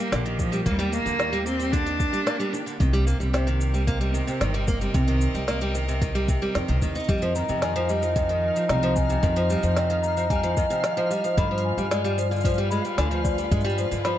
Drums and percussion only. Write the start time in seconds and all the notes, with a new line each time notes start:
0.12 snare, open hi-hat, cabasa
0.26 open hi-hat
0.39 kick, cabasa
0.53 open hi-hat, cabasa
0.66 kick, open hi-hat, cabasa
0.79 open hi-hat
0.93 cabasa
1.06 cabasa
1.20 snare, cabasa
1.33 open hi-hat
1.47 cabasa
1.60 cabasa
1.73 kick, open hi-hat, cabasa
1.86 open hi-hat
2.00 kick, cabasa
2.13 open hi-hat, cabasa
2.27 snare, open hi-hat, cabasa
2.40 open hi-hat
2.54 cabasa
2.67 open hi-hat, cabasa
2.80 kick, open hi-hat, cabasa
2.94 open hi-hat
3.07 cabasa
3.21 cabasa
3.34 snare, open hi-hat, cabasa
3.47 open hi-hat
3.61 cabasa
3.74 cabasa
3.87 kick, open hi-hat, cabasa
4.01 open hi-hat
4.15 cabasa
4.28 cabasa
4.41 snare, open hi-hat, cabasa
4.54 open hi-hat
4.68 kick, cabasa
4.81 open hi-hat, cabasa
4.94 kick, open hi-hat, cabasa
5.08 open hi-hat
5.21 cabasa
5.35 cabasa
5.48 snare, open hi-hat, cabasa
5.61 open hi-hat
5.75 cabasa
5.89 cabasa
6.02 kick, open hi-hat, cabasa
6.15 open hi-hat
6.28 kick, cabasa
6.42 open hi-hat
6.55 snare, open hi-hat, cabasa
6.68 open hi-hat
6.82 kick, cabasa
6.95 open hi-hat, cabasa
7.00 open hi-hat
7.04 open hi-hat
7.09 kick, open hi-hat, cabasa
7.18 open hi-hat
7.22 open hi-hat
7.35 cabasa
7.49 cabasa
7.62 snare, open hi-hat, cabasa
7.76 open hi-hat
7.89 cabasa
8.03 cabasa
8.16 kick, open hi-hat, cabasa
8.29 open hi-hat
8.56 open hi-hat, cabasa
8.69 snare, open hi-hat, cabasa
8.83 open hi-hat
8.96 kick, cabasa
9.09 open hi-hat, cabasa
9.23 kick, open hi-hat, cabasa
9.36 open hi-hat
9.50 cabasa
9.63 cabasa
9.77 snare, open hi-hat, cabasa
9.90 open hi-hat
10.04 cabasa
10.17 cabasa
10.30 kick, open hi-hat, cabasa
10.44 open hi-hat
10.57 kick, cabasa
10.70 open hi-hat, cabasa
10.84 snare, open hi-hat, cabasa
10.97 open hi-hat
11.11 cabasa
11.24 open hi-hat, cabasa
11.37 kick, open hi-hat, cabasa
11.58 open hi-hat
11.78 cabasa
11.91 snare, open hi-hat, cabasa
12.05 open hi-hat
12.18 cabasa
12.32 cabasa
12.36 cabasa
12.41 kick, cabasa
12.45 open hi-hat, cabasa
12.49 cabasa
12.54 cabasa
12.58 open hi-hat
12.71 cabasa
12.85 open hi-hat, cabasa
12.98 snare, open hi-hat, cabasa
13.11 open hi-hat
13.25 kick, cabasa
13.38 open hi-hat, cabasa
13.52 kick, open hi-hat
13.61 cabasa
13.65 open hi-hat
13.69 cabasa
13.78 cabasa
13.91 open hi-hat, cabasa
14.05 snare, open hi-hat, cabasa